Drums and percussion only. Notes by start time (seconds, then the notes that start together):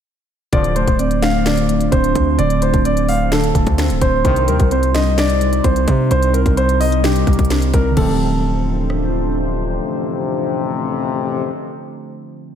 0.53 kick, closed hi-hat
0.64 closed hi-hat
0.76 closed hi-hat
0.88 kick, closed hi-hat
0.99 closed hi-hat
1.11 closed hi-hat
1.22 finger snap, snare, closed hi-hat
1.46 finger snap, snare, closed hi-hat
1.57 closed hi-hat
1.69 closed hi-hat
1.81 closed hi-hat
1.92 kick, closed hi-hat
2.04 closed hi-hat
2.15 kick, closed hi-hat
2.39 closed hi-hat
2.50 closed hi-hat
2.62 closed hi-hat
2.74 kick, closed hi-hat
2.85 closed hi-hat
2.97 closed hi-hat
3.09 open hi-hat
3.32 finger snap, snare, closed hi-hat
3.44 closed hi-hat
3.55 kick, closed hi-hat
3.67 kick, closed hi-hat
3.78 finger snap, snare, closed hi-hat
3.90 closed hi-hat
4.01 kick, closed hi-hat
4.25 kick, closed hi-hat
4.36 closed hi-hat
4.48 closed hi-hat
4.60 kick, closed hi-hat
4.71 closed hi-hat
4.83 closed hi-hat
4.95 finger snap, snare, closed hi-hat
5.18 finger snap, snare, closed hi-hat
5.30 closed hi-hat
5.41 closed hi-hat
5.53 closed hi-hat
5.64 kick, closed hi-hat
5.76 closed hi-hat
5.88 kick, closed hi-hat
6.11 closed hi-hat
6.23 closed hi-hat
6.34 closed hi-hat
6.46 kick, closed hi-hat
6.57 closed hi-hat
6.69 closed hi-hat
6.81 closed hi-hat, open hi-hat
6.92 closed hi-hat
7.04 finger snap, snare, closed hi-hat
7.16 closed hi-hat
7.27 kick, closed hi-hat
7.33 closed hi-hat
7.39 kick, closed hi-hat
7.45 closed hi-hat
7.50 finger snap, snare, closed hi-hat
7.62 closed hi-hat
7.74 kick, closed hi-hat
7.97 kick, crash
8.90 cross-stick